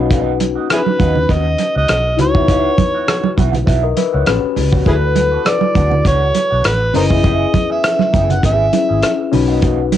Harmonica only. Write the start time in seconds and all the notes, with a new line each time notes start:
0.73 E4 G#4 B4
1.32 D#5
1.77 D#5
2.21 C#5
4.88 E4 G#4 B4
5.47 D5
6.07 C#5
6.67 B4
6.96 A#4 C5 D#5
7.72 E5
8.32 F#5
8.45 E5